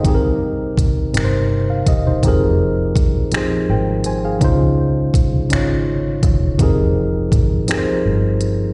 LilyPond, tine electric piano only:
\new Staff \with { instrumentName = "Tine electric piano" } { \time 6/8 \key f \minor \tempo 4. = 55 << { c''16 r2 f''16 <g' ees''>16 <ees' c''>16~ | <ees' c''>16 r4. r16 <bes' g''>8 <c'' aes''>16 <aes' f''>16~ | <aes' f''>16 r2 r8. | r2. | } \\ { <c c' ees' g' aes' bes'>4. <c c' ees' g' bes' c''>4. | <f c' ees' g' aes' bes'>4. <f c' ees' g' aes' c''>4. | <des des' ees' f' c''>4. <des des' ees' f' des''>4. | <f c' ees' g' aes' bes'>4. <f c' ees' g' aes' bes' c''>4. | } >> }